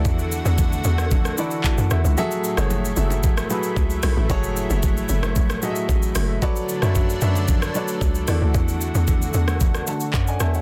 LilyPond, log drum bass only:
\new Staff \with { instrumentName = "Log drum bass" } { \clef bass \time 4/4 \key fis \minor \tempo 4 = 113 e,8. e,8. e,4 r8. fis,16 e,16 cis,16 | r8. fis,,8. fis,,4 r8 cis,8 b,,16 a,,16 | fis,,8. fis,,8. fis,,4 r8 a,,8 fis,,8 | r8. fis,8. fis,4 r8 cis,8 e,16 d,16 |
e,8. e,8. e,4 r8 fis,8 e,8 | }